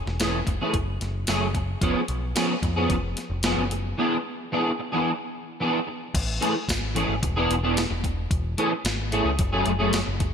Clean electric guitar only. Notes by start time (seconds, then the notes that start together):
0.20 E3 A3 C#4 G#4
0.47 muted clean electric guitar stroke
0.61 E3 A3 C#4 G#4
1.28 F#3 A3 C#4 G#4
1.55 muted clean electric guitar stroke
1.82 F3 B3 C#4 G#4
2.35 F3 B3 C#4 G#4
2.63 muted clean electric guitar stroke
2.76 F3 B3 C#4 G#4
3.44 F3 B3 C#4 G#4
3.70 muted clean electric guitar stroke
3.98 E3 B3 D4 G#4
4.52 E3 B3 D4 G#4
4.79 muted clean electric guitar stroke
4.92 E3 B3 D4 G#4
5.60 E3 B3 D4 G#4
5.87 muted clean electric guitar stroke
6.41 E3 A3 C#4 G#4
6.54 muted clean electric guitar stroke
6.95 E3 A3 C#4 G#4
7.23 muted clean electric guitar stroke
7.36 E3 B3 D4 G#4
7.63 E3 B3 D4 G#4
7.90 muted clean electric guitar stroke
8.04 muted clean electric guitar stroke
8.58 E3 A3 C#4 G#4
8.72 muted clean electric guitar stroke
9.12 E3 A3 C#4 G#4
9.39 muted clean electric guitar stroke
9.53 F#3 A3 C#4 G#4
9.79 F#3 A3 C#4 G#4
10.06 muted clean electric guitar stroke
10.19 muted clean electric guitar stroke